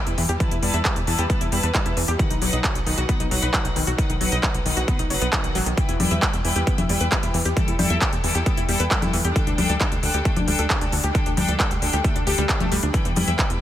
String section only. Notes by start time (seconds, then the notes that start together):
Already playing: G3 E4 B4 G5
0.40 G3 E4 B4 A5
0.63 G3 E4 B4 A5
0.85 G3 E4 B4 A5
1.08 G3 E4 B4 A5
1.30 G3 E4 B4 A5
1.52 G3 E4 B4 A5
1.75 G3 E4 B4 A5
2.20 F#3 D#4 B4 F#5
2.42 F#3 D#4 B4 F#5
2.64 F#3 D#4 B4 F#5
2.87 F#3 D#4 B4 F#5
3.09 F#3 D#4 B4 F#5
3.31 F#3 D#4 B4 F#5
3.54 F#3 D#4 B4 F#5
3.98 F#3 D#4 B4 F#5
4.21 F#3 D#4 B4 F#5
4.43 F#3 D#4 B4 F#5
4.66 F#3 D#4 B4 F#5
4.88 F#3 D#4 B4 F#5
5.10 F#3 D#4 B4 F#5
5.33 F#3 D#4 B4 F#5
5.77 G3 E4 B4 G5
6.00 G3 E4 B4 G5
6.22 G3 E4 B4 G5
6.45 G3 E4 B4 G5
6.67 G3 E4 B4 G5
6.89 G3 E4 B4 G5
7.12 G3 E4 B4 G5
7.57 G3 E4 A4 G5
7.79 G3 E4 A4 G5
8.02 G3 E4 A4 G5
8.24 G3 E4 A4 G5
8.46 G3 E4 A4 G5
8.69 G3 E4 A4 G5
8.91 G3 E4 A4 G5
9.36 G3 D4 A4 G5
9.58 G3 D4 A4 G5
9.80 G3 D4 A4 G5
10.03 G3 D4 A4 G5
10.25 G3 D4 A4 G5
10.48 G3 D4 A4 G5
10.70 G3 D4 A4 G5
11.15 G3 D4 A4 G5
11.37 G3 D4 A4 G5
11.60 G3 D4 A4 G5
11.82 G3 D4 A4 G5
12.04 G3 D4 A4 G5
12.27 G3 D4 A4 G5
12.49 G3 D4 A4 G5
12.94 G3 E4 B4 G5
13.16 G3 E4 B4 G5
13.39 G3 E4 B4 G5